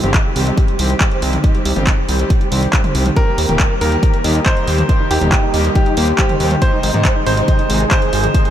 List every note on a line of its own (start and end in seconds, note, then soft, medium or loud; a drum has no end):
0.04 0.19 G1 medium
0.04 0.19 D#3 medium
0.04 0.19 G3 medium
0.04 0.19 C4 medium
0.04 0.10 G4 medium
0.04 0.19 G4 medium
0.04 closed hi-hat soft
0.04 mid tom medium
0.14 0.21 D#5 medium
0.14 kick loud
0.14 clap loud
0.14 closed hi-hat medium
0.25 0.32 G4 medium
0.36 0.52 C2 loud
0.36 0.44 D#3 medium
0.36 0.43 G3 medium
0.36 0.44 C4 medium
0.36 0.42 G4 medium
0.36 0.44 G4 medium
0.36 open hi-hat medium
0.47 0.62 D#3 medium
0.47 0.62 G3 medium
0.47 0.62 C4 medium
0.47 0.62 G4 medium
0.47 0.53 D#5 medium
0.47 closed hi-hat soft
0.57 0.64 G4 medium
0.57 kick loud
0.57 closed hi-hat medium
0.68 0.75 G4 medium
0.68 closed hi-hat soft
0.79 0.95 C2 loud
0.79 0.94 D#3 medium
0.79 0.94 G3 medium
0.79 0.94 C4 medium
0.79 0.94 G4 medium
0.79 1.35 C5 medium
0.79 open hi-hat loud
0.90 closed hi-hat soft
1.01 1.08 D#3 medium
1.01 1.08 G3 medium
1.01 1.08 C4 medium
1.01 1.08 G4 medium
1.01 kick loud
1.01 clap loud
1.01 closed hi-hat medium
1.11 1.27 D#3 medium
1.11 1.27 G3 medium
1.11 1.27 C4 medium
1.11 1.27 G4 medium
1.11 closed hi-hat soft
1.22 1.38 C2 loud
1.22 open hi-hat medium
1.33 closed hi-hat soft
1.33 mid tom medium
1.44 1.59 D#3 medium
1.44 1.59 G3 medium
1.44 1.59 C4 medium
1.44 1.59 G4 medium
1.44 1.50 D#5 medium
1.44 kick loud
1.44 closed hi-hat medium
1.55 1.61 G4 medium
1.55 closed hi-hat soft
1.65 1.73 C2 medium
1.65 1.72 G4 medium
1.65 open hi-hat loud
1.76 1.92 G1 medium
1.76 1.91 D#3 medium
1.76 1.91 G3 medium
1.76 1.91 C4 medium
1.76 1.83 G4 medium
1.76 1.91 G4 medium
1.76 closed hi-hat soft
1.76 mid tom medium
1.87 1.93 D#5 loud
1.87 kick loud
1.87 clap loud
1.87 closed hi-hat medium
1.98 2.04 G4 medium
2.09 2.24 C2 medium
2.09 2.16 D#3 medium
2.09 2.16 G3 medium
2.09 2.16 C4 medium
2.09 2.16 G4 medium
2.09 2.15 G4 medium
2.09 open hi-hat medium
2.19 2.34 D#3 medium
2.19 2.34 G3 medium
2.19 2.34 C4 medium
2.19 2.35 G4 medium
2.19 2.26 C5 medium
2.19 closed hi-hat soft
2.30 2.37 G4 medium
2.30 kick loud
2.30 closed hi-hat medium
2.41 2.47 G4 medium
2.41 closed hi-hat soft
2.52 2.68 C2 loud
2.52 2.67 D#3 medium
2.52 2.67 G3 medium
2.52 2.67 C4 medium
2.52 2.67 G4 medium
2.52 3.08 C5 loud
2.52 open hi-hat loud
2.63 closed hi-hat soft
2.73 2.81 D#3 medium
2.73 2.81 G3 medium
2.73 2.81 C4 medium
2.73 2.81 G4 medium
2.73 kick loud
2.73 clap loud
2.73 closed hi-hat medium
2.84 2.99 D#3 medium
2.84 2.99 G3 medium
2.84 2.99 C4 medium
2.84 2.99 G4 medium
2.84 closed hi-hat soft
2.84 mid tom medium
2.95 3.11 C2 loud
2.95 open hi-hat medium
3.06 closed hi-hat soft
3.06 mid tom medium
3.16 3.32 D#3 medium
3.16 3.32 G3 medium
3.16 3.32 A#3 medium
3.16 3.32 G4 medium
3.16 3.73 A#4 loud
3.16 3.23 G5 loud
3.16 kick loud
3.16 closed hi-hat medium
3.27 3.34 A#4 medium
3.38 3.46 D#2 loud
3.38 3.45 A#4 medium
3.38 open hi-hat loud
3.49 3.65 D#1 medium
3.49 3.64 D#3 medium
3.49 3.64 G3 medium
3.49 3.64 A#3 medium
3.49 3.64 G4 medium
3.49 3.55 A#4 medium
3.49 closed hi-hat soft
3.49 mid tom medium
3.60 3.66 G5 medium
3.60 kick loud
3.60 clap loud
3.60 closed hi-hat medium
3.70 3.77 A#4 medium
3.81 3.97 D#2 loud
3.81 3.89 D#3 medium
3.81 3.89 G3 medium
3.81 3.89 A#3 medium
3.81 3.89 G4 medium
3.81 4.37 A#4 medium
3.81 3.88 A#4 medium
3.81 open hi-hat medium
3.92 4.07 D#3 medium
3.92 4.07 G3 medium
3.92 4.07 A#3 medium
3.92 4.07 G4 medium
3.92 3.99 G5 loud
3.92 closed hi-hat soft
4.03 4.09 A#4 medium
4.03 kick loud
4.03 closed hi-hat medium
4.14 4.20 A#4 medium
4.14 closed hi-hat soft
4.24 4.40 D#2 loud
4.24 4.40 D#3 medium
4.24 4.40 G3 medium
4.24 4.40 A#3 medium
4.24 4.40 G4 medium
4.24 4.81 D#5 loud
4.24 open hi-hat loud
4.35 closed hi-hat soft
4.46 4.54 D#3 medium
4.46 4.54 G3 medium
4.46 4.54 A#3 medium
4.46 4.54 G4 medium
4.46 5.02 C5 medium
4.46 kick loud
4.46 clap loud
4.46 closed hi-hat medium
4.57 4.72 D#3 medium
4.57 4.72 G3 medium
4.57 4.72 A#3 medium
4.57 4.72 G4 medium
4.57 closed hi-hat soft
4.68 4.83 D#2 loud
4.68 open hi-hat medium
4.78 closed hi-hat soft
4.78 mid tom medium
4.89 5.04 D#3 medium
4.89 5.04 G3 medium
4.89 5.04 A#3 medium
4.89 5.04 G4 medium
4.89 4.96 D#5 loud
4.89 kick loud
4.89 closed hi-hat medium
5.00 5.06 D#4 medium
5.11 5.19 D#2 loud
5.11 5.17 D#4 medium
5.11 5.67 G4 medium
5.11 open hi-hat loud
5.21 5.37 D#1 medium
5.21 5.37 D#3 medium
5.21 5.37 G3 medium
5.21 5.37 A#3 medium
5.21 5.28 D#4 medium
5.21 5.37 G4 medium
5.21 closed hi-hat soft
5.21 mid tom medium
5.32 5.39 D#5 medium
5.32 kick loud
5.32 clap loud
5.32 closed hi-hat medium
5.43 5.50 D#4 medium
5.54 5.70 D#2 loud
5.54 5.62 D#3 medium
5.54 5.61 G3 medium
5.54 5.62 A#3 medium
5.54 5.60 D#4 medium
5.54 5.62 G4 medium
5.54 open hi-hat medium
5.65 5.80 D#3 medium
5.65 5.80 G3 medium
5.65 5.80 A#3 medium
5.65 5.80 G4 medium
5.65 5.71 D#5 medium
5.65 closed hi-hat soft
5.75 5.82 D#4 medium
5.75 6.16 G4 medium
5.75 kick loud
5.75 closed hi-hat medium
5.86 5.93 D#4 medium
5.86 closed hi-hat soft
5.97 6.13 D#2 loud
5.97 6.12 D#3 medium
5.97 6.12 G3 medium
5.97 6.12 A#3 medium
5.97 6.12 G4 medium
5.97 6.53 C5 loud
5.97 open hi-hat loud
6.08 closed hi-hat soft
6.19 6.26 D#3 medium
6.19 6.26 G3 medium
6.19 6.26 A#3 medium
6.19 6.60 G4 medium
6.19 6.26 G4 medium
6.19 kick loud
6.19 clap loud
6.19 closed hi-hat medium
6.29 6.45 D#3 medium
6.29 6.45 G3 medium
6.29 6.45 A#3 medium
6.29 6.45 G4 medium
6.29 closed hi-hat soft
6.29 mid tom medium
6.40 6.56 D#2 loud
6.40 open hi-hat medium
6.51 closed hi-hat soft
6.51 mid tom medium
6.62 6.77 C3 medium
6.62 6.77 D#3 medium
6.62 6.77 G#3 medium
6.62 6.77 D#4 medium
6.62 7.18 C5 medium
6.62 6.68 C5 loud
6.62 kick loud
6.62 closed hi-hat medium
6.73 6.79 D#4 medium
6.83 6.91 G#1 loud
6.83 6.90 D#4 medium
6.83 open hi-hat loud
6.94 7.10 G#2 medium
6.94 7.09 C3 medium
6.94 7.09 D#3 medium
6.94 7.09 G#3 medium
6.94 7.09 D#4 medium
6.94 7.01 D#4 medium
6.94 closed hi-hat medium
6.94 mid tom medium
7.05 7.11 C5 medium
7.05 kick loud
7.05 clap loud
7.05 closed hi-hat medium
7.16 7.22 D#4 medium
7.26 7.42 G#1 loud
7.26 7.34 C3 medium
7.26 7.34 D#3 medium
7.26 7.34 G#3 medium
7.26 7.34 D#4 medium
7.26 7.33 D#4 medium
7.26 7.83 C5 loud
7.26 open hi-hat medium
7.37 7.52 C3 medium
7.37 7.52 D#3 medium
7.37 7.52 G#3 medium
7.37 7.52 D#4 medium
7.37 7.44 C5 loud
7.37 closed hi-hat medium
7.48 7.55 D#4 medium
7.48 kick loud
7.48 closed hi-hat medium
7.59 7.65 D#4 medium
7.59 closed hi-hat soft
7.70 7.86 G#1 loud
7.70 7.85 C3 medium
7.70 7.85 D#3 medium
7.70 7.85 G#3 medium
7.70 7.85 D#4 medium
7.70 8.26 G#4 medium
7.70 open hi-hat loud
7.91 7.99 C3 medium
7.91 7.99 D#3 medium
7.91 7.99 G#3 medium
7.91 7.99 D#4 medium
7.91 8.47 C5 loud
7.91 kick loud
7.91 clap loud
7.91 closed hi-hat medium
8.02 8.17 C3 medium
8.02 8.17 D#3 medium
8.02 8.17 G#3 medium
8.02 8.17 D#4 medium
8.02 closed hi-hat soft
8.13 8.29 G#1 loud
8.13 open hi-hat medium
8.24 closed hi-hat medium
8.24 mid tom medium
8.34 8.50 C3 medium
8.34 8.50 D#3 medium
8.34 8.50 G#3 medium
8.34 8.50 D#4 medium
8.34 8.41 D#5 loud
8.34 kick loud
8.34 closed hi-hat medium
8.45 8.50 G#4 medium
8.45 closed hi-hat soft